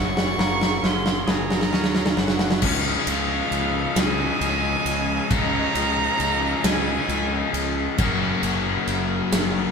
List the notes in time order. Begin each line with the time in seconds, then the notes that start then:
Already playing: F#1 F#3 C#4 G#4 A#4 F#5 C#6
0.17 snare
0.38 F#1 A#3, snare
0.61 snare
0.82 F#1 C#4 C6, snare
1.06 snare
1.27 F#1 G#4 A#5, snare
1.50 snare
1.61 snare
1.72 D#2 C#4, snare
1.84 snare
1.95 snare
2.06 snare
2.17 F#1 F#3 F#5, snare
2.28 snare
2.39 snare
2.51 snare
2.61 C#2 C#3 F3 G#3 C#4 G#4 D#5 F5, kick, crash
3.07 C#2 F5, ride
3.51 C#2, ride
3.96 C#2 G#5, snare, ride
4.41 C#2, ride
4.85 C#2, ride
5.30 C#2 C#3 F3 G#3 C#4 A#5, kick, ride
5.75 C#2, ride
6.20 C#2, ride
6.64 C#2 G#5, snare, ride
7.09 C#2, ride
7.53 C#2, ride
7.98 F#1 F#2 C#3 F#3 A#3 C#4 F#4 A#4, kick, ride
8.43 F#1, ride
8.87 F#1, ride
9.32 F#1, snare, ride